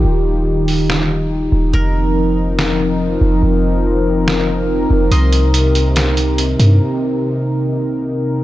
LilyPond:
<<
  \new Staff \with { instrumentName = "Qanun" } { \time 4/4 \key f \dorian \tempo 4 = 142 << { <f'' ees'''>1~ | <f'' ees'''>1~ | <f'' ees'''>1 | <ees'' c'''>1~ |
<ees'' c'''>1 | } \\ { g'1 | bes'1~ | bes'1~ | bes'1~ |
bes'1 | } >> }
  \new Staff \with { instrumentName = "Analog synth pad" } { \time 4/4 \key f \dorian << { <ees' f' g'>1 | <c' bes'>1~ | <c' bes'>1~ | <c' bes'>1~ |
<c' bes'>1 | } \\ { ees1 | f1~ | f1 | c1~ |
c1 | } >> }
  \new Staff \with { instrumentName = "808-style bass" } { \clef bass \time 4/4 \key f \dorian ees,,2.~ ees,,8 ees,,8 | f,,2.~ f,,8 f,,8 | f,,2.~ f,,8 f,,8 | c,2.~ c,8 g,8 |
r1 | }
  \new DrumStaff \with { instrumentName = "Drums" } \drummode { \time 4/4 r4 r8 hho8 sn4 r4 | r4 r4 sn4 r4 | r4 r4 sn4 r4 | hh8 hh8 hh8 hh8 <hh sn>8 hh8 hh8 hh8 |
r4 r4 r4 r4 | }
>>